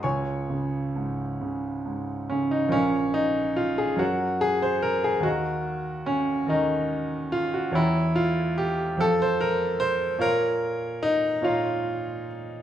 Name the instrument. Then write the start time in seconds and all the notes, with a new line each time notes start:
grand piano
0.03 C#2 C#5 G#5 C#6
0.50 C#3
0.96 G#2
1.41 C#3
1.86 G#2
2.30 C#3 C#4
2.51 D#4
2.68 A#1 C#4 A#4 C#5 F5
3.14 D#4
3.56 F4
3.78 G#4
3.96 F#2 F#4 A#4 C#5 F#5
4.41 G#4
4.62 C5
4.82 A#4
5.04 G#4
5.20 D#2 F#4 A#4 D#5 A#5
6.06 C#4
6.46 D#2 D#4 A#4 D#5
6.50 A#5
7.32 F4
7.54 F#4
7.72 E2 E4 C#5 G5 A#5
8.16 F4
8.58 G4
8.97 F2 A4 C5 F5
9.01 A5
9.22 C5
9.41 A#4
9.80 C5
10.18 A#2 A#4 C#5 F5
10.23 A#5
11.03 D#4
11.42 A#2 F4 C#5 F5 A#5